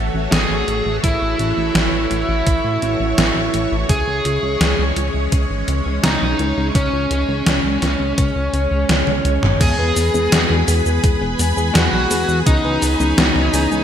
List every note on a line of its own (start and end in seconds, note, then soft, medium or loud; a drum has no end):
0.00 0.10 A1 loud
0.00 9.57 E3 medium
0.00 3.85 A3 medium
0.00 3.85 F#4 medium
0.00 9.57 C#5 medium
0.14 0.28 A1 medium
0.32 0.46 A1 loud
0.32 0.95 G#4 medium
0.32 snare loud
0.32 closed hi-hat medium
0.50 0.64 A1 medium
0.68 0.82 A1 loud
0.68 closed hi-hat medium
0.86 1.00 A1 medium
1.04 1.17 A1 loud
1.04 3.75 E4 medium
1.04 kick loud
1.04 closed hi-hat medium
1.21 1.35 A1 medium
1.39 1.53 A1 medium
1.39 closed hi-hat medium
1.57 1.71 A1 medium
1.75 1.89 A1 loud
1.75 snare loud
1.75 closed hi-hat medium
1.93 2.07 A1 medium
2.11 2.25 A1 medium
2.11 closed hi-hat medium
2.29 2.42 A1 medium
2.47 2.60 A1 loud
2.47 kick loud
2.47 closed hi-hat medium
2.64 2.78 A2 medium
2.82 2.96 A1 loud
2.82 closed hi-hat medium
3.00 3.14 A1 medium
3.18 3.32 A1 loud
3.18 snare loud
3.18 closed hi-hat medium
3.36 3.50 A1 medium
3.54 3.67 A1 medium
3.54 closed hi-hat medium
3.72 3.85 A1 medium
3.89 4.03 C#2 loud
3.89 9.57 G#3 medium
3.89 9.57 C#4 medium
3.89 4.82 G#4 medium
3.89 kick loud
3.89 closed hi-hat medium
4.07 4.21 C#2 medium
4.25 4.39 C#2 medium
4.25 closed hi-hat medium
4.43 4.57 C#2 medium
4.61 4.75 C#2 loud
4.61 snare loud
4.61 closed hi-hat medium
4.79 4.92 C#2 medium
4.96 5.10 C#2 medium
4.96 closed hi-hat medium
5.14 5.28 C#2 medium
5.32 5.46 C#2 loud
5.32 kick loud
5.32 closed hi-hat medium
5.50 5.64 G#1 medium
5.68 5.82 C#2 medium
5.68 closed hi-hat medium
5.86 6.00 C#2 medium
6.04 6.17 C#2 loud
6.04 6.66 D#4 medium
6.04 snare loud
6.04 closed hi-hat medium
6.21 6.35 B1 medium
6.39 6.53 C#2 loud
6.39 closed hi-hat medium
6.57 6.71 C#2 medium
6.75 6.89 C#2 loud
6.75 9.47 C#4 medium
6.75 kick loud
6.75 closed hi-hat medium
6.93 7.07 C#2 medium
7.11 7.25 C#2 medium
7.11 closed hi-hat medium
7.29 7.42 C#2 medium
7.46 7.60 C#2 loud
7.46 snare loud
7.46 closed hi-hat medium
7.64 7.78 C#2 medium
7.82 7.96 C#2 medium
7.82 snare medium
7.82 closed hi-hat medium
8.00 8.14 C#2 medium
8.18 8.32 C#2 loud
8.18 kick loud
8.18 closed hi-hat medium
8.36 8.49 C#2 medium
8.53 8.67 C#2 medium
8.53 closed hi-hat medium
8.71 8.85 C#2 medium
8.89 9.03 C#2 loud
8.89 snare loud
8.89 closed hi-hat medium
8.89 high tom medium
9.07 9.21 C#2 medium
9.07 high tom medium
9.25 9.39 C#2 medium
9.25 closed hi-hat medium
9.43 9.57 G#1 medium
9.43 mid tom medium
9.61 9.75 E2 loud
9.61 9.76 E3 medium
9.61 9.76 G#3 medium
9.61 9.76 B3 medium
9.61 13.84 G#4 medium
9.61 10.54 G#4 loud
9.61 9.76 G#4 medium
9.61 12.44 B4 medium
9.61 13.84 G#5 medium
9.61 13.84 B5 medium
9.61 kick loud
9.61 closed hi-hat loud
9.61 crash loud
9.61 shaker soft
9.79 9.92 E2 medium
9.79 10.04 E3 medium
9.79 10.04 G#3 medium
9.79 10.04 B3 medium
9.79 10.04 B4 medium
9.96 10.10 E2 loud
9.96 open hi-hat medium
9.96 shaker medium
10.14 10.28 E2 medium
10.14 10.28 E3 medium
10.14 10.28 G#3 medium
10.14 10.28 B3 medium
10.14 10.28 G#4 loud
10.14 shaker soft
10.32 10.46 E2 loud
10.32 10.64 E3 loud
10.32 10.64 G#3 medium
10.32 10.64 B3 medium
10.32 10.64 F#4 loud
10.32 snare loud
10.32 closed hi-hat loud
10.32 shaker soft
10.50 10.64 E2 medium
10.68 10.82 E2 loud
10.68 10.82 E3 loud
10.68 10.82 G#3 medium
10.68 10.82 B3 medium
10.68 10.82 G#4 loud
10.68 open hi-hat medium
10.68 shaker medium
10.86 11.00 E2 medium
10.86 10.99 E3 medium
10.86 10.99 G#3 medium
10.86 10.99 B3 medium
10.86 10.99 G#4 loud
10.86 shaker soft
11.04 11.17 E2 medium
11.04 11.17 E3 medium
11.04 11.17 G#3 medium
11.04 11.17 B3 medium
11.04 11.17 G#4 medium
11.04 kick loud
11.04 closed hi-hat medium
11.04 shaker soft
11.21 11.35 E1 medium
11.21 11.53 E3 medium
11.21 11.53 G#3 medium
11.21 11.53 B3 medium
11.21 11.53 G#4 medium
11.39 11.53 E2 medium
11.39 open hi-hat medium
11.39 shaker medium
11.57 11.71 E2 medium
11.57 11.71 E3 loud
11.57 11.71 G#3 medium
11.57 11.71 B3 medium
11.57 11.71 G#4 loud
11.57 shaker soft
11.75 11.89 E2 loud
11.75 12.06 E3 medium
11.75 12.06 G#3 medium
11.75 12.06 B3 medium
11.75 12.38 F#4 medium
11.75 12.06 G#4 medium
11.75 snare loud
11.75 closed hi-hat loud
11.75 shaker soft
11.93 12.07 B1 medium
12.11 12.25 E2 medium
12.11 12.24 E3 medium
12.11 12.24 G#3 medium
12.11 12.24 B3 medium
12.11 12.24 G#4 loud
12.11 open hi-hat medium
12.11 shaker medium
12.29 12.42 E2 medium
12.29 12.42 E3 medium
12.29 12.42 G#3 medium
12.29 12.42 B3 medium
12.29 12.42 G#4 medium
12.29 shaker soft
12.46 12.60 C#2 loud
12.46 12.62 E3 medium
12.46 12.62 B3 medium
12.46 12.62 C#4 medium
12.46 13.84 D#4 loud
12.46 12.62 G#4 medium
12.46 13.84 C#5 medium
12.46 kick loud
12.46 closed hi-hat loud
12.46 shaker soft
12.64 12.78 C#2 medium
12.64 12.90 E3 medium
12.64 12.90 B3 medium
12.64 12.90 C#4 medium
12.64 12.90 B4 medium
12.82 12.96 C#2 loud
12.82 open hi-hat medium
12.82 shaker medium
13.00 13.14 C#2 medium
13.00 13.14 E3 medium
13.00 13.14 B3 medium
13.00 13.14 C#4 medium
13.00 13.14 G#4 loud
13.00 shaker soft
13.18 13.32 C#2 loud
13.18 13.49 E3 loud
13.18 13.49 B3 medium
13.18 13.49 C#4 medium
13.18 13.49 F#4 loud
13.18 snare loud
13.18 closed hi-hat loud
13.18 shaker soft
13.36 13.49 C#2 medium
13.36 snare soft
13.53 13.67 C#2 medium
13.53 13.67 E3 loud
13.53 13.67 B3 medium
13.53 13.67 C#4 medium
13.53 13.67 G#4 loud
13.53 open hi-hat medium
13.53 shaker medium
13.71 13.84 C#2 medium
13.71 13.84 E3 medium
13.71 13.84 B3 medium
13.71 13.84 C#4 medium
13.71 13.84 G#4 loud
13.71 shaker soft